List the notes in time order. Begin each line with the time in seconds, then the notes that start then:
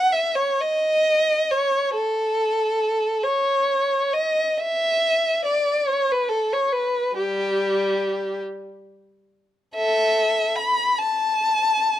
Already playing: F#5
0.12 E5
0.35 C#5
0.61 D#5
1.51 C#5
1.94 A4
3.23 C#5
4.13 D#5
4.60 E5
5.45 D5
5.88 C#5
6.11 B4
6.29 A4
6.53 C#5
6.73 B4
7.17 G3 G4
9.75 A4 E5
10.56 B5
10.98 A5